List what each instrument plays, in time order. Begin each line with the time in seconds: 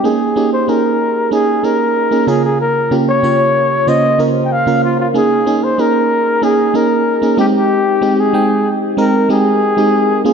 0.04 fm electric piano A#3 C#4 D#4 G#4, flugelhorn G#4
0.36 fm electric piano A#3 C#4 D#4 G4
0.53 flugelhorn C5
0.68 fm electric piano A#3 C#4 D#4 G#4, flugelhorn A#4
1.31 fm electric piano A#3 C#4 D#4 G#4, flugelhorn G#4
1.63 fm electric piano A#3 C#4 D#4 G#4, flugelhorn A#4
2.11 fm electric piano A#3 C#4 D#4 G#4
2.27 fm electric piano C#3 A#3 C#4 F4 A#4, flugelhorn G#4
2.44 flugelhorn G#4
2.60 flugelhorn A#4
2.91 fm electric piano C#3 A#3 C#4 F4 G4
3.08 flugelhorn C#5
3.23 fm electric piano C#3 A#3 C#4 F4 C#5
3.87 fm electric piano C#3 A#3 C#4 F4 C5, flugelhorn D#5
4.19 fm electric piano C#3 A#3 C#4 F4 A#4
4.45 flugelhorn G5
4.52 flugelhorn F5
4.66 fm electric piano C#3 A#3 C#4 F4 A#4
4.84 flugelhorn F4
5.00 flugelhorn F4
5.14 fm electric piano A#3 C#4 D#4 G#4, flugelhorn G#4
5.46 fm electric piano A#3 C#4 D#4 G#4
5.64 flugelhorn C5
5.78 fm electric piano A#3 C#4 D#4 G#4, flugelhorn A#4
6.42 fm electric piano A#3 C#4 D#4 G#4, flugelhorn G#4
6.74 fm electric piano A#3 C#4 D#4 G#4, flugelhorn A#4
7.22 fm electric piano A#3 C#4 D#4 G#4
7.37 fm electric piano G#3 C4 D#4 G4, flugelhorn G4
7.56 flugelhorn G4
8.01 fm electric piano G#3 C4 D#4 G4
8.20 flugelhorn G#4
8.33 fm electric piano G#3 C4 D#4 G5
8.97 fm electric piano G#3 C4 D#4 A#4, flugelhorn A#4
9.29 fm electric piano G#3 C4 D#4 G4, flugelhorn G#4
9.77 fm electric piano G#3 C4 D#4 G4
10.25 fm electric piano A#3 C#4 F4 G#4, flugelhorn G#4